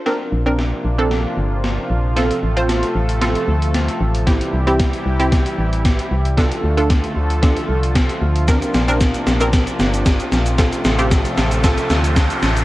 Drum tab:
HH |----------------|xx-xxx-xxx-xxx-x|xx-xxx-xxx-xxx-x|xx-xxx-xxx-xxx-x|
SH |----------------|----------------|----------------|----------------|
SD |o---o---o---o---|o---o---o---o---|o---o---o---o---|o---o---o---o---|
BD |----------------|----------------|o---o---o---o---|o---o---o---o---|

HH |xx-xxx-xxx-xxx-x|xx-xxx-xxx-xxx-x|
SH |xxxxxxxxxxxxxxxx|xxxxxxxxxxxxxxxx|
SD |o-o-o-o-o-o-o-o-|o-o-o-o-o-o-o-o-|
BD |o---o---o---o---|o---o---o---o---|